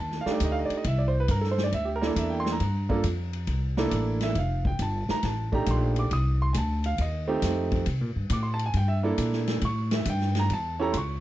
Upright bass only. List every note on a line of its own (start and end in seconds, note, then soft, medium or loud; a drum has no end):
0.00 0.24 D#2 medium
0.26 muted upright bass stroke soft
0.40 0.68 D2 medium
0.70 muted upright bass stroke soft
0.85 1.27 C2 loud
1.29 1.71 G2 loud
1.72 2.15 D2 medium
2.16 2.59 E2 medium
2.60 3.03 G2 medium
3.04 3.46 F2 loud
3.47 3.90 C2 medium
3.92 4.34 A1 medium
4.35 4.78 F1 medium
4.79 5.07 G1 medium
5.09 muted upright bass stroke soft
5.23 5.66 A1 medium
5.67 6.10 A#1 loud
6.11 6.54 C2 loud
6.55 6.97 D2 loud
6.99 7.41 D#2 medium
7.42 7.85 F2 loud
7.86 8.01 C3 medium
8.01 8.15 A#2 medium
8.16 8.30 G2 medium
8.30 8.73 A2 loud
8.74 9.17 G2 medium
9.18 9.61 A#2 medium
9.62 10.05 A2 loud
10.06 10.49 G2 loud
10.49 10.93 E2 medium
10.94 11.20 C#2 medium